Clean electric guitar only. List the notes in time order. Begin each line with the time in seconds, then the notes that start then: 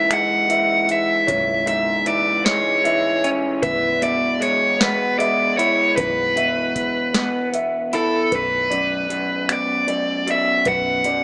Already playing: C#2 G#2 E3 E4
0.11 G#3
0.50 E3
1.28 C#2
1.66 G#2
2.06 E3
2.45 G#3
2.84 E3
3.24 C#4
3.63 E2
4.02 B2
4.40 G#3
4.79 B3
5.19 G#3
5.59 E4
5.97 E2
6.36 B2
7.15 B3
7.93 E4
8.32 B1
8.71 F#2
9.10 F#2
9.49 B2
9.89 F#2
10.27 B2
10.66 B1
11.05 F#2